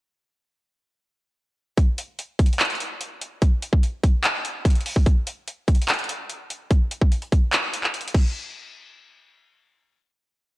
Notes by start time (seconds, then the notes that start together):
1.77 kick, closed hi-hat
1.98 closed hi-hat
2.19 closed hi-hat
2.39 kick, closed hi-hat
2.46 closed hi-hat
2.53 closed hi-hat
2.60 clap, closed hi-hat
2.65 closed hi-hat
2.70 closed hi-hat
2.75 closed hi-hat
2.80 closed hi-hat
3.01 closed hi-hat
3.21 closed hi-hat
3.42 kick, closed hi-hat
3.62 closed hi-hat
3.73 kick
3.83 closed hi-hat
4.03 kick, closed hi-hat
4.24 clap, closed hi-hat
4.45 closed hi-hat
4.65 kick, closed hi-hat
4.70 closed hi-hat
4.75 closed hi-hat
4.81 closed hi-hat
4.86 open hi-hat
4.96 kick
5.06 kick, closed hi-hat
5.27 closed hi-hat
5.48 closed hi-hat
5.68 kick, closed hi-hat
5.75 closed hi-hat
5.82 closed hi-hat
5.88 clap, closed hi-hat
5.94 closed hi-hat
5.99 closed hi-hat
6.04 closed hi-hat
6.09 closed hi-hat
6.29 closed hi-hat
6.50 closed hi-hat
6.71 kick, closed hi-hat
6.91 closed hi-hat
7.01 kick
7.12 closed hi-hat
7.22 closed hi-hat
7.32 kick, closed hi-hat
7.53 clap, closed hi-hat
7.74 closed hi-hat
7.84 clap
7.94 closed hi-hat
8.01 closed hi-hat
8.08 closed hi-hat
8.14 kick, crash